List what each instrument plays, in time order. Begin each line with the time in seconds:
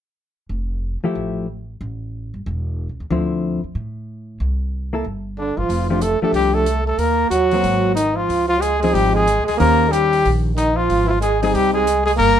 0.49 upright bass F1
1.03 hollow-body jazz guitar F3 A3 E4 G4, muted upright bass stroke
1.15 upright bass A1
1.81 upright bass A1
2.34 upright bass G1
2.46 upright bass E1
2.89 upright bass C#2
3.00 upright bass D#2
3.11 upright bass D2, hollow-body jazz guitar D3 F3 C4 E4
3.64 muted upright bass stroke
3.75 upright bass A2
4.40 upright bass C2
4.93 hollow-body jazz guitar A#3 E4 A4
5.05 upright bass G1
5.38 trombone D3, trumpet D4
5.57 upright bass G1, trombone F3, trumpet F4
5.69 upright bass F1, open hi-hat
5.89 hollow-body jazz guitar F3 A3 D4 G4, trombone F3, trumpet F4
6.01 trombone A3, trumpet A4, closed hi-hat
6.21 hollow-body jazz guitar F3 A3 D4 G4, trombone A3, trumpet A4, muted upright bass stroke
6.33 upright bass C2, trombone G3, trumpet G4, open hi-hat
6.54 trombone A3, trumpet A4
6.66 closed hi-hat
6.86 trombone A3, trumpet A4
6.98 upright bass D#2, trombone A#3, trumpet A#4, open hi-hat
7.30 upright bass D#2, trombone F#3, trumpet F#4, closed hi-hat
7.51 hollow-body jazz guitar F#3 A#3 C4, open hi-hat
7.63 upright bass G#1, open hi-hat
7.95 trombone D#3, trumpet D#4, closed hi-hat
8.15 trombone F3, trumpet F4
8.29 upright bass C#2, open hi-hat
8.48 trombone F3, trumpet F4
8.61 trombone G#3, trumpet G#4, closed hi-hat
8.80 hollow-body jazz guitar F3, trombone G#3, trumpet G#4, open hi-hat
8.84 hollow-body jazz guitar C4 D#4
8.92 upright bass G#1, trombone G3, trumpet G4, open hi-hat
9.12 trombone G#3, trumpet G#4
9.27 closed hi-hat
9.38 upright bass C2
9.45 trombone G#3, trumpet G#4, open hi-hat
9.49 upright bass C#2
9.58 upright bass D#2, hollow-body jazz guitar D#3 C#4 G4 C5, trombone A#3, trumpet A#4, open hi-hat
9.90 trombone G3, trumpet G4, closed hi-hat
10.13 open hi-hat
10.25 upright bass A#1, open hi-hat
10.55 trombone D#3, trumpet D#4, closed hi-hat
10.76 trombone F3, trumpet F4
10.90 upright bass G#1, open hi-hat
11.05 trombone E3 F3, trumpet E4
11.09 trumpet F4
11.21 trombone G#3, trumpet G#4, closed hi-hat
11.42 hollow-body jazz guitar G3 C4 D#4, trombone G#3, trumpet G#4, open hi-hat
11.52 upright bass C2, trombone G3, trumpet G4, open hi-hat
11.73 trombone G#3, trumpet G#4
11.87 closed hi-hat
12.06 trombone G#3, trumpet G#4, open hi-hat
12.16 upright bass G1, trombone A#3, trumpet A#4, open hi-hat